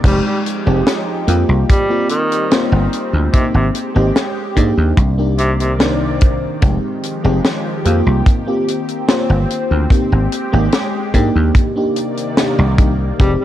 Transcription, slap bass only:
0.04 0.19 F1 medium
0.67 0.81 F1 loud
1.28 1.43 F2 loud
1.49 1.63 C2 medium
2.72 2.87 G1 medium
3.13 3.28 D2 loud
3.34 muted slap bass stroke soft
3.54 3.69 G#1 medium
3.96 4.10 G#1 loud
4.57 4.72 G#2 loud
4.77 4.92 D#2 medium
4.97 6.46 C2 medium
6.63 6.78 F1 loud
7.25 7.39 F1 loud
7.86 8.01 F2 loud
8.06 8.21 C2 medium
9.30 9.44 G1 medium
9.71 9.85 D2 loud
10.12 10.26 G#1 medium
10.53 10.67 G#1 loud
11.14 11.29 G#2 medium
11.35 11.50 D#2 medium
12.59 13.11 C2 medium
13.20 13.35 F1 medium

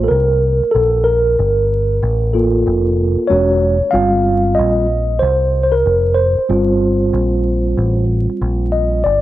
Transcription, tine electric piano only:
0.04 0.10 A4 medium
0.08 0.75 A#4 medium
0.72 1.06 A4 medium
1.04 3.36 A#4 medium
2.33 3.26 A#3 soft
2.33 3.26 F4 medium
2.33 3.26 A4 medium
3.27 3.76 G#3 soft
3.27 3.76 C#4 soft
3.27 3.76 F#4 medium
3.27 3.95 C#5 medium
3.91 4.85 G3 medium
3.91 4.86 C4 soft
3.91 4.86 F4 medium
3.91 4.58 F5 loud
4.55 5.22 D#5 medium
5.19 5.62 C5 medium
5.63 5.73 C5 medium
5.72 6.18 A#4 medium
6.15 8.03 C5 medium
6.49 9.00 G3 medium
6.49 9.01 C4 medium
6.49 9.01 F4 medium
8.72 9.02 D#5 medium
9.04 9.21 D5 medium

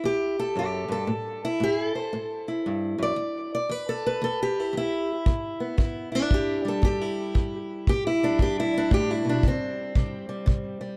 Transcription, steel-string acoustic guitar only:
0.00 0.52 E2 medium
0.00 0.39 E4 soft
0.05 0.57 G4 medium
0.39 0.91 A4 medium
0.55 0.88 F#2 medium
0.55 1.10 G4 medium
0.88 1.08 G2 medium
0.88 1.43 A4 medium
1.07 1.57 A2 medium
1.45 1.95 E4 medium
1.60 2.09 A2 medium
1.60 1.90 G#4 loud
1.90 2.48 A4 loud
1.95 3.01 C5 soft
2.13 2.62 A2 medium
2.48 3.58 E4 soft
2.66 2.98 G2 medium
2.98 3.16 F#2 medium
3.03 3.53 D5 medium
3.16 3.66 E2 medium
3.55 3.71 D5 medium
3.69 4.18 E2 medium
3.69 4.05 B4 medium
3.89 4.23 A4 medium
4.06 4.60 B4 medium
4.22 4.71 E2 medium
4.22 4.41 A4 medium
4.43 5.11 G4 medium
4.60 4.76 E4 medium
4.73 5.22 E2 medium
4.77 5.77 E4 loud
5.26 5.75 E2 medium
5.60 6.34 B3 soft
5.78 6.27 E2 medium
5.78 6.11 E4 soft
6.12 6.84 D4 loud
6.12 6.68 E4 soft
6.31 6.79 E2 medium
6.31 6.83 G4 medium
6.65 8.23 G3 soft
6.65 7.01 A4 medium
6.82 7.31 E2 medium
6.82 7.54 G4 medium
7.01 7.88 E4 loud
7.35 7.83 E2 medium
7.88 8.36 E2 medium
7.88 8.06 G4 loud
8.07 8.41 E4 medium
8.23 8.73 G3 soft
8.23 8.75 D4 medium
8.39 8.88 E2 medium
8.39 8.58 G4 medium
8.60 8.93 E4 medium
8.74 9.95 G3 soft
8.74 9.28 D4 medium
8.91 9.24 A2 medium
8.91 9.11 G4 loud
9.11 9.45 E4 medium
9.25 9.43 B2 medium
9.29 9.45 D4 medium
9.44 9.92 C3 medium
9.48 10.97 C4 medium
9.95 10.44 C3 medium
9.95 10.28 G3 medium
10.29 10.80 G3 soft
10.46 10.95 C3 medium
10.81 10.97 G3 soft

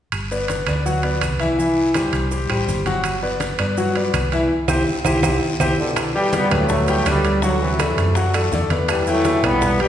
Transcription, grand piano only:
0.31 0.61 B3 medium
0.31 0.61 B4 medium
0.31 0.61 D5 medium
0.68 0.82 B3 medium
0.68 0.83 B4 medium
0.68 0.83 D5 medium
0.86 1.00 F#3 medium
0.86 1.01 F#4 medium
0.86 1.01 F#5 medium
1.03 1.33 B3 medium
1.03 1.34 B4 medium
1.03 1.34 D5 medium
1.40 1.55 E3 medium
1.40 1.55 E4 medium
1.40 1.55 E5 medium
1.58 1.88 E3 medium
1.58 1.88 E4 medium
1.58 1.88 E5 medium
1.95 2.25 G3 medium
1.95 2.25 G4 medium
1.95 2.25 C5 medium
2.31 2.46 G3 medium
2.31 2.46 G4 medium
2.31 2.47 C5 medium
2.49 2.80 G3 medium
2.49 2.80 G4 medium
2.49 2.80 C5 medium
2.86 3.16 F#3 medium
2.86 3.16 F#4 medium
2.86 3.16 F#5 medium
3.23 3.53 B3 medium
3.23 3.53 B4 medium
3.23 3.53 D5 medium
3.59 3.74 B3 medium
3.59 3.75 B4 medium
3.59 3.75 D5 medium
3.78 3.93 F#3 medium
3.78 3.93 F#4 medium
3.78 3.93 F#5 medium
3.96 4.26 B3 medium
3.96 4.26 B4 medium
3.96 4.26 D5 medium
4.32 4.47 E3 medium
4.32 4.48 E4 medium
4.32 4.48 E5 medium
4.69 4.81 E4 medium
4.69 4.81 G4 medium
4.69 4.81 C5 medium
5.06 5.17 E4 medium
5.06 5.17 G4 medium
5.06 5.17 C5 medium
5.23 5.35 E4 medium
5.23 5.35 G4 medium
5.23 5.35 C5 medium
5.60 5.72 E4 medium
5.60 5.72 G4 medium
5.60 5.72 C5 medium
6.15 6.45 G3 medium
6.15 6.45 G4 medium
6.15 6.46 G5 medium
6.52 6.82 B3 medium
6.52 6.82 B4 medium
6.52 6.82 D5 medium
6.89 7.04 G3 medium
6.89 7.04 G4 medium
6.89 7.04 G5 medium
7.07 7.36 B3 medium
7.07 7.37 B4 medium
7.07 7.37 D5 medium
7.44 7.73 F#3 medium
7.44 7.73 F#4 medium
7.44 7.73 F#5 medium
7.80 8.10 A3 medium
7.80 8.10 A4 medium
7.80 8.10 D5 medium
8.16 8.31 F#3 medium
8.16 8.31 F#4 medium
8.16 8.31 F#5 medium
8.34 8.49 A3 medium
8.34 8.49 A4 medium
8.34 8.49 D5 medium
8.53 8.68 A3 medium
8.53 8.68 A4 medium
8.53 8.68 D5 medium
8.72 9.01 B3 medium
8.72 9.01 B4 medium
8.72 9.02 D5 medium
9.08 9.37 E3 medium
9.08 9.38 E4 medium
9.08 9.38 G5 medium
9.44 9.74 B3 medium
9.44 9.74 B4 medium
9.44 9.74 D5 medium
9.80 9.88 G3 medium
9.80 9.88 G4 medium
9.80 9.88 G5 medium

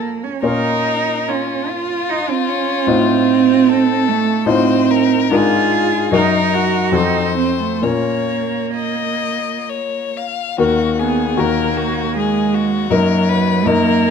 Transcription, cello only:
0.00 0.25 A#3 medium
0.24 0.44 C#4 soft
0.44 1.30 D#4 medium
1.29 1.71 C#4 soft
1.70 2.11 F4 medium
2.09 2.31 D#4 medium
2.30 2.50 C4 medium
2.49 2.88 C#4 medium
2.87 4.10 C4 medium
4.08 4.49 A3 medium
4.48 5.32 C4 medium
5.33 6.11 F4 medium
6.13 6.55 D#4 medium
6.54 6.96 F#4 medium
6.95 7.36 D#4 medium
7.37 7.59 C4 soft
7.61 7.85 A3 soft
7.84 10.16 A#3 medium
10.98 11.40 B3 medium
11.38 12.17 A#3 medium
12.15 12.90 G#3 medium
12.91 13.67 F#3 medium
13.65 14.10 A#3 medium

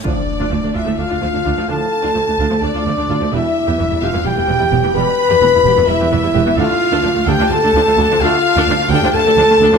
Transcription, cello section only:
0.06 0.10 D2 medium
0.40 0.45 D2 medium
0.53 0.57 D2 soft
0.64 0.69 D2 soft
0.76 0.81 D2 medium
0.87 0.92 D2 soft
0.99 1.04 D2 soft
1.11 1.16 D2 medium
1.22 1.27 D2 soft
1.35 1.40 D2 soft
1.47 1.51 D2 medium
1.59 1.63 D2 soft
1.71 1.75 D2 medium
2.05 2.10 D2 medium
2.17 2.21 D2 soft
2.28 2.33 D2 soft
2.41 2.45 D2 medium
2.51 2.56 D2 soft
2.64 2.68 D2 medium
2.75 2.80 D2 medium
2.86 2.91 D2 soft
2.98 3.03 D2 medium
3.09 3.14 D2 medium
3.21 3.26 D2 soft
3.33 3.38 E2 medium
3.68 3.73 E2 medium
3.80 3.85 E2 medium
3.92 3.97 E2 medium
4.02 4.07 E2 medium
4.14 4.19 E2 medium
4.26 4.31 E2 medium
4.38 4.42 E2 medium
4.49 4.54 E2 medium
4.61 4.66 E2 medium
4.72 4.77 E2 medium
4.85 4.89 E2 soft
4.96 5.00 E2 medium
5.31 5.35 E2 medium
5.43 5.48 E2 medium
5.54 5.59 E2 medium
5.66 5.71 E2 medium
5.78 5.82 E2 medium
5.88 5.93 E2 medium
6.01 6.05 E2 medium
6.12 6.17 E2 medium
6.24 6.29 E2 medium
6.36 6.40 E2 medium
6.48 6.52 E2 medium
6.58 6.63 D2 loud
6.93 6.98 D2 medium
7.05 7.09 D2 medium
7.17 7.21 D2 medium
7.28 7.32 D2 loud
7.40 7.44 D2 medium
7.52 7.56 D2 medium
7.63 7.68 D2 medium
7.74 7.79 D2 medium
7.86 7.91 D2 medium
7.97 8.02 D2 medium
8.09 8.14 D2 medium
8.21 8.26 D2 loud
8.56 8.61 D2 loud
8.68 8.72 D2 medium
8.79 8.83 D2 medium
8.90 8.94 D2 loud
9.03 9.07 D2 medium
9.14 9.19 D2 medium
9.25 9.30 D2 loud
9.37 9.42 D2 medium
9.49 9.53 D2 medium
9.59 9.64 D2 loud
9.71 9.76 D2 medium

